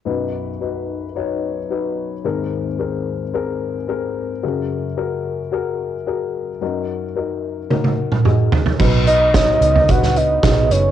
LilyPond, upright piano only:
<<
  \new Staff \with { instrumentName = "Upright piano" } { \time 4/4 \key b \lydian \tempo 4 = 110 <dis' fis' b'>4 <dis' fis' b'>4 <dis' fis' cis''>4 <dis' fis' b'>4 | <bis gis' ais'>4 <bis gis' ais'>4 <bis gis' ais'>4 <bis gis' ais'>4 | <fis' gis' ais'>4 <fis' gis' ais'>4 <fis' gis' ais'>4 <fis' gis' ais'>4 | <dis' fis' ais'>4 <dis' fis' ais'>4 <dis' fis' ais'>4 <dis' fis' gis'>4 |
<dis' fis' b'>4 <dis' fis' cis''>4 <d' dis' fis' b'>4 <dis' fis' gis'>4 | }
  \new Staff \with { instrumentName = "Upright piano" } { \clef bass \time 4/4 \key b \lydian <b,, fis,>1 | <gis,, dis,>1 | <fis, cis>1 | <fis, fis>1 |
r1 | }
>>